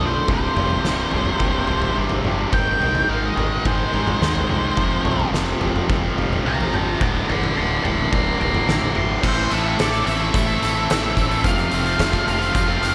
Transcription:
Already playing: D2 A2
0.00 B1 D2 A2 D3 F3 A3 D4, mid tom
0.06 C5
0.14 D3 F3 A3 D4
0.27 C1 C2 G2 C3, kick, floor tom
0.33 C5
0.55 F1 C2 G2 C3, floor tom, mid tom
0.70 floor tom
0.82 C1 C2 G2 C3, snare
1.11 C1 C2 G2 C3, floor tom
1.25 mid tom
1.39 C1 C2 G2 C3, kick, floor tom
1.67 C1 C2 G2 C3, floor tom
1.82 floor tom
1.96 G1 C2 G2 C3
2.09 floor tom
2.24 G1 C2 G2 C3, mid tom
2.52 G#1 G#2 D#3 G#3 G5, kick, floor tom
2.79 C2 G#2 D#3 G#3, floor tom
2.95 floor tom
3.08 G#1 G#2 D#3 G#3 F5
3.26 D#5
3.36 G#1 G#2 D#3 G#3, floor tom
3.65 G#1 G#2 D#3 G#3 C5, kick, floor tom
3.93 G#1 G#2 D#3 G#3, floor tom
4.07 floor tom, mid tom
4.21 D#2 G#2 D#3 G#3, snare
4.35 floor tom
4.49 C2 G#2 D#3 G#3, mid tom
4.76 F1 F2 C3 F3, kick, floor tom
5.04 B1 F2 C3 F3, floor tom, mid tom
5.20 floor tom
5.32 F1 F2 C3 F3, snare
5.60 F1 F2 C3 F3, floor tom
5.76 mid tom
5.87 F1 F2 C3 F3, kick, floor tom
6.16 F1 F2 C3 F3, floor tom
6.33 floor tom
6.44 C2 F2 C3 F3 G5 A#5
6.61 floor tom
6.70 G#1 F2 C3 F3 G5, mid tom
6.76 A#5
7.00 D1 D2 A2 D3 G5 A#5, kick, floor tom
7.28 G1 D2 A2 D3 A5 C6, floor tom
7.44 floor tom
7.54 D1 D2 A2 D3 A5
7.58 C6
7.84 D1 D2 A2 D3 A5 C6, floor tom
8.12 D1 D2 A2 D3 A#5 D6, kick, floor tom
8.39 D1 D2 A2 D3 A#5 D6, floor tom
8.54 floor tom, mid tom
8.67 A1 D2 A2 D3 A#5, snare
8.71 D6
8.81 floor tom
8.93 G#1 D2 A2 D3, mid tom
8.97 C6
9.21 A1 A2 E3 A3 C4 E4 A4, kick, crash
9.28 C5
9.36 muted distorted electric guitar stroke
9.50 A1 A3 C4 E4 A4 E5, closed hi-hat
9.64 A3 C4 E4 A4
9.78 A1 A2 E3 A3 C4 E4 A4 D5, snare, closed hi-hat
9.92 A3 C4 E4 A4, closed hi-hat
10.06 A1 A3 C4 E4 A4 E5, closed hi-hat
10.19 A3 C4 E4 A4
10.34 A1, kick, closed hi-hat
10.46 A3 C4 E4 A4, closed hi-hat
10.60 A1 A3 C4 E4 A4, snare, closed hi-hat
10.74 A3 C4 E4 A4
10.88 A1 A2 E3 A3 C4 E4 A4, snare, closed hi-hat
11.03 A3 C4 E4 A4
11.16 A1 A3 C4 E4 A4, kick, closed hi-hat
11.31 A3 C4 E4 A4, closed hi-hat
11.44 F1 F2 C3 F3 A3 C4 F4 F5, kick, closed hi-hat
11.57 muted distorted electric guitar stroke, closed hi-hat
11.71 F1 F3 A3 C4 F4, closed hi-hat
11.86 F3 A3 C4 F4, closed hi-hat
11.98 F1 F2 C3 F3 A3 C4 F4, kick, snare, closed hi-hat
12.11 F3 A3 C4 F4, kick, closed hi-hat
12.26 F1 F3 A3 C4 F4 F5, closed hi-hat
12.39 F3 A3 C4 F4, closed hi-hat
12.55 F1, kick, closed hi-hat
12.66 F3 A3 C4 F4
12.80 F1 F3 A3 C4 F4, snare, closed hi-hat

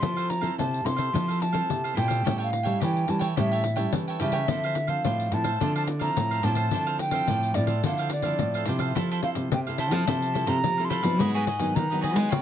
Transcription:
Already playing: C6
0.01 F3 C4 E4 A4 C5 F5, pandeiro
0.17 A4 C5 F5, pandeiro
0.29 A#5, muted cavaquinho stroke, pandeiro
0.41 C4 E4 A4 C5 F5, pandeiro
0.58 C3 A4 C5 F5 A5, pandeiro
0.74 pandeiro
0.84 C3 C4 E4 A4 C6, pandeiro
0.96 A4 C5 F5, pandeiro
1.13 F3 C4 E4 A4 C5 F5, pandeiro
1.28 A4 C5 F5, pandeiro
1.40 A5, muted cavaquinho stroke, pandeiro
1.52 C4 E4 A4 C5 F5, pandeiro
1.69 C3, pandeiro
1.84 A4 C5 F5, pandeiro
1.95 A#2 C4 E4 A4 C5 F5 G5, pandeiro
2.08 A4 C5 F5, pandeiro
2.24 A2 G3 C#4 E4 G4 A4 C#5 G5, pandeiro
2.38 A4 C#5 G5, pandeiro
2.43 F5
2.50 muted cavaquinho stroke, pandeiro
2.63 G3 C#4 E4 A4 C#5 G5, pandeiro
2.80 E3 G4 A4 C#5 G5, pandeiro
2.97 pandeiro
3.08 E3 G3 C#4 E4 A5, pandeiro
3.19 A4 C#5 G5, pandeiro
3.36 A2 G3 C#4 E4 G4 A4 C#5 E5 G5, pandeiro
3.51 A4 C#5 G5, pandeiro
3.63 muted cavaquinho stroke, pandeiro
3.76 G3 C#4 E4 A4 C#5 G5, pandeiro
3.93 E3, pandeiro
4.08 A4 C#5 G5, pandeiro
4.20 C#3 G3 C#4 E4 G4 A4 C#5 E5 G5, pandeiro
4.32 A4 C#5 G5, pandeiro
4.48 D3 F3 C4 D4 E4 A4 C5 F5, pandeiro
4.64 A4 C5 F5, pandeiro
4.75 muted cavaquinho stroke, pandeiro
4.87 F3 C4 A4 C5 F5, pandeiro
5.05 A2 D4 A4 C5 F5, pandeiro
5.20 pandeiro
5.32 A2 F3 C4 E4 A5, pandeiro
5.44 A4 C5 F5, pandeiro
5.60 D3 F3 C4 D4 E4 A4 C5 F5, pandeiro
5.76 A4 C5 F5 A5, pandeiro
5.87 muted cavaquinho stroke, pandeiro
5.99 F3 C4 E4 A4 C5 F5 A#5, pandeiro
6.17 A2, pandeiro
6.31 A4 C5 F5, pandeiro
6.43 A2 F3 C4 D4 E4 A4 C5 F5 A5, pandeiro
6.55 A4 C5 F5, pandeiro
6.71 D3 F3 C4 D4 E4 A4 C5 F5, pandeiro
6.87 A4 C5 F5, pandeiro
6.99 G5, muted cavaquinho stroke, pandeiro
7.11 F3 C4 E4 A4 C5 F5, pandeiro
7.28 A2 D4 A4 C5 F5, pandeiro
7.43 pandeiro
7.54 A2 F3 C4 E4 D5, pandeiro
7.67 A4 C5 F5, pandeiro
7.84 D3 F3 C4 D4 E4 A4 C5 F5, pandeiro
7.98 A4 C5 F5, pandeiro
8.10 D5, muted cavaquinho stroke, pandeiro
8.22 F3 C4 E4 A4 C5 F5, pandeiro
8.39 A2, pandeiro
8.54 A4 C5 F5, pandeiro
8.65 C3 F3 C4 D4 E4 A4 C5 F5, pandeiro
8.79 A4 C5 F5, pandeiro
8.95 F3 C4 E4 A4 C5 F5, pandeiro
9.11 E4 A4 C5 F5, pandeiro
9.23 C4 E4 A4 C5 F5, pandeiro
9.35 C3, pandeiro
9.52 C3 G5, pandeiro
9.67 C4 E4 A4 C5 F5, pandeiro
9.78 E4 A4 C5 F5 A5, pandeiro
9.91 F3 C4 E4 A4 C5 F5, pandeiro
10.07 C3 F3 C4 E4 A4 C5 F5, pandeiro
10.22 pandeiro
10.33 C4 E4 A4 C5 F5, pandeiro
10.46 C3 E4 A4 C5 F5 A#5, pandeiro
10.64 C3 F3, pandeiro
10.77 C4 E4 A4 C5 F5, pandeiro
10.85 C6
10.89 E4 A4 C5 F5 B5, pandeiro
11.02 F3 F#3 B3 D#4 A4 C5 F5, pandeiro
11.19 G#2 G#3 F#4 G#4 B4 D#5, pandeiro
11.34 F#4 G#4 B4 D#5 G#5, pandeiro
11.46 F#4 G#4 B4 D#5, pandeiro
11.59 D#3 F#3 B3 D#4, pandeiro
11.75 D#3 A#5, pandeiro
11.90 F#3 B3 D#4 G#4 B4 D#5, pandeiro
12.01 F#4 G#4 B4 D#5 G#5, pandeiro
12.14 G#3 G#4 B4 D#5, pandeiro
12.29 C#3 G#3 B3 F4 B4 C#5 F5 G5, pandeiro
12.33 F4

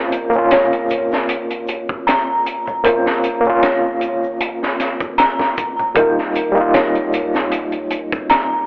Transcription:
Already playing: A#1 A#3 C4 C#4 F4 A#4
0.12 closed hi-hat, shaker
0.30 A#3, shaker
0.36 C#4 F4
0.51 C#5, snare, closed hi-hat, shaker
0.73 closed hi-hat
0.89 G#1, closed hi-hat, shaker
1.11 snare, shaker
1.29 closed hi-hat, shaker
1.51 closed hi-hat
1.68 closed hi-hat, shaker
1.89 kick, shaker
2.07 A#5, snare, closed hi-hat, shaker
2.46 closed hi-hat, shaker
2.67 low conga, shaker
2.84 A#3 C4 C#4 F4 A#4, kick, closed hi-hat, shaker
3.06 snare
3.24 closed hi-hat, shaker
3.41 A#3, shaker
3.45 A#1 C#4
3.50 F4
3.63 C#5, snare, closed hi-hat, shaker
4.01 G#1, closed hi-hat, shaker
4.23 shaker
4.40 closed hi-hat, shaker
4.63 snare
4.80 snare, closed hi-hat, shaker
5.01 kick, shaker
5.18 A#5, snare, closed hi-hat, shaker
5.40 snare, low conga
5.58 kick, closed hi-hat, shaker
5.79 low conga, shaker
5.95 D#1 G3 A#3 D#4 A#4, kick, closed hi-hat, shaker
5.99 F4
6.18 snare
6.35 closed hi-hat, shaker
6.52 G3 A#3, shaker
6.58 D#4 F4
6.74 C#5, snare, closed hi-hat, shaker
6.95 closed hi-hat
7.13 C#2, closed hi-hat, shaker
7.34 snare, shaker
7.52 closed hi-hat, shaker
7.72 closed hi-hat
7.91 closed hi-hat, shaker
8.12 kick, shaker
8.30 A#5, snare, closed hi-hat, shaker

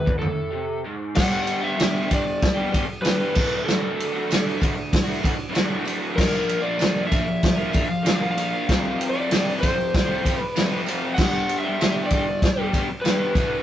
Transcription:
Already playing: B4
0.06 D2, kick
0.19 A2 A4, floor tom
0.52 C3
0.85 G#2
1.15 G2 D3 G3 B3 D4 G4 F#5, kick, snare, crash, tambourine
1.47 ride, tambourine
1.60 G3 B3 D4 G4 E5
1.76 G2 D3 G3, ride
1.80 B3 D4 G4, snare, tambourine
2.06 G3 B3 D4
2.11 G4 D5, kick, ride, tambourine
2.24 muted overdriven electric guitar stroke
2.42 kick, snare, ride, tambourine
2.54 G3 B3 D4 G4
2.70 G3 B3 D4 G4
2.74 kick, ride, tambourine
2.86 muted overdriven electric guitar stroke
3.02 G2 D3 G3 B3 B4, ride, tambourine
3.06 D4 G4, snare
3.17 B3 D4 G4
3.22 G3
3.33 D2 A2 D3 A3 F#4, kick, tambourine, crash
3.64 D2 A2 D3 A3 A4
3.68 F#4, snare, tambourine
4.00 ride, tambourine
4.13 A3 F#4
4.17 D3
4.28 D2 A2 D3 A3 F#4, ride, tambourine
4.33 snare
4.58 A2 D3 A3, kick, tambourine
4.62 F#4, ride
4.75 muted overdriven electric guitar stroke
4.92 kick, snare, ride, tambourine
5.04 A3 F#4
5.08 D3
5.19 A2 D3 A3, tambourine
5.24 F#4, kick, ride
5.36 muted overdriven electric guitar stroke
5.49 D2 A2 D3 A3
5.54 F#4, snare, ride, tambourine
5.68 D3 A3 F#4
5.83 A2 D3 A3 F#4, tambourine
5.87 ride
6.14 A#2 F3 A#3 D4 F4 A#4, kick, crash, tambourine
6.19 snare
6.47 ride, tambourine
6.62 D4 F4 A#4 D5
6.66 A#3
6.77 A#2 F3 A#3 D4, ride, tambourine
6.81 F4 A#4, snare
7.07 A#3 E5
7.12 D4 F4 A#4, kick, ride, tambourine
7.27 muted overdriven electric guitar stroke
7.43 kick, snare, ride, tambourine
7.56 A#3 D4 F4 A#4
7.71 A#3 D4 F4 A#4, kick, ride, tambourine
7.82 F5
7.88 muted overdriven electric guitar stroke
8.03 A#2 F3 A#3 D4 F4, snare, ride, tambourine
8.07 A#4
8.20 A#3 D4 F4 A#4
8.31 F5
8.36 A#3 D4 F4 A#4, ride, tambourine
8.68 F2 C3 F3 A3 C4 F4, kick, snare, ride, tambourine
9.01 ride, tambourine
9.09 D5
9.14 A3 C4 F4
9.18 F3
9.30 F2 C3 F3 A3 C4 F4, snare, ride, tambourine
9.59 F3 A3 C4 F4 C5, kick, ride
9.66 tambourine
9.76 muted overdriven electric guitar stroke
9.94 kick, snare, ride, tambourine
10.06 A3 C4 F4
10.10 F3
10.22 F3 A3 C4, kick, tambourine
10.26 F4, ride
10.39 B4, muted overdriven electric guitar stroke
10.55 F2 C3 F3 A3 C4 F4, snare, ride, tambourine
10.70 F3 A3 C4 F4
10.85 F3 A3 C4, ride, tambourine
10.89 F4
11.14 G2 D3 F#5, tambourine, crash
11.18 G3 B3 D4 G4, kick, snare
11.49 ride, tambourine
11.58 E5
11.63 B3 D4 G4
11.68 G3
11.78 G2 D3 G3 B3 D4, ride, tambourine
11.82 G4, snare
12.06 D5
12.10 G3 B3 D4 G4, kick, ride, tambourine
12.27 muted overdriven electric guitar stroke
12.42 kick, snare, ride, tambourine
12.57 G3 B3 D4 G4
12.71 G3 B3 D4 G4, kick, ride, tambourine
12.89 muted overdriven electric guitar stroke
13.01 G2 B4, ride, tambourine
13.06 D3 G3 B3 D4 G4, snare
13.17 B3 D4 G4
13.22 G3
13.33 D2 A2 D3 A3, kick, ride, tambourine
13.38 F#4

